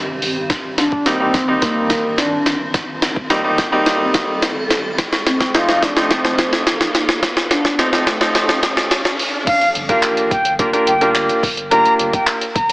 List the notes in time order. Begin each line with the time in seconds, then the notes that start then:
Already playing: G2 D#3 C4 G4, riser
0.22 open hi-hat
0.50 G2 C4 A#4, kick, snare, closed hi-hat
0.78 D4, snare, closed hi-hat
0.92 kick
1.06 G3 A#3 C4 D#4, snare, closed hi-hat
1.20 G3 A#3 C4 D#4
1.34 kick, snare, closed hi-hat
1.48 G3 A#3 C4 D#4
1.62 A#3, kick, snare, closed hi-hat
1.90 kick, snare, closed hi-hat
2.18 D4, snare, closed hi-hat
2.46 snare, closed hi-hat
2.74 A4, kick, snare, closed hi-hat
3.02 snare, closed hi-hat
3.16 kick
3.30 G3 A#3 C4 D#4, snare, closed hi-hat
3.44 G3 A#3 C4 D#4
3.58 kick, snare, closed hi-hat
3.72 G3 A#3 C4 D#4
3.86 snare, closed hi-hat
4.14 kick, snare, closed hi-hat
4.42 snare, closed hi-hat
4.70 snare, closed hi-hat
4.98 F3 D#4, kick, snare, closed hi-hat
5.13 snare
5.26 C4, snare, closed hi-hat
5.41 kick, snare
5.54 F3 A3 C4 D#4 F4, snare, closed hi-hat
5.68 F3 A3 C4 D#4, snare
5.83 D4, kick, snare, closed hi-hat
5.96 F3 A3 C4 D#4, snare
6.11 C4, kick, snare, closed hi-hat
6.25 snare
6.38 kick, snare, closed hi-hat
6.53 snare
6.67 snare, closed hi-hat
6.81 snare
6.95 snare, closed hi-hat
7.09 snare
7.23 kick, snare, closed hi-hat
7.37 snare
7.51 D4, snare, closed hi-hat
7.65 kick, snare
7.79 F3 A3 C4 D#4, snare, closed hi-hat
7.93 F3 A3 C4 D#4, snare
8.07 A3, kick, snare, closed hi-hat
8.21 F3 A3 C4 D#4, snare
8.35 snare, closed hi-hat
8.49 snare
8.63 kick, snare, closed hi-hat
8.77 snare
8.91 snare, closed hi-hat
9.05 snare
9.19 open hi-hat
9.47 F5, kick, closed hi-hat, crash
9.61 closed hi-hat
9.75 G1, closed hi-hat
9.89 A#3 D4 F4 G4 A#4 F5, kick, closed hi-hat
10.03 clap, closed hi-hat
10.17 closed hi-hat
10.31 G1 G5, kick, closed hi-hat
10.45 closed hi-hat
10.59 A#3 D4 F4 G4 A#4, kick, closed hi-hat
10.73 A#3 D4 F4 G4 A#4, closed hi-hat
10.87 G1 G5, closed hi-hat
11.01 A#3 D4 F4 G4 A#4, closed hi-hat
11.15 clap, closed hi-hat
11.29 closed hi-hat
11.43 G1, kick, open hi-hat
11.57 closed hi-hat
11.71 A#3 D4 F4 G4 A#4 A#5, closed hi-hat
11.86 closed hi-hat
11.99 G1, closed hi-hat
12.13 G5, kick, closed hi-hat
12.27 clap, closed hi-hat
12.41 closed hi-hat
12.56 G1 A#5, kick, closed hi-hat
12.70 closed hi-hat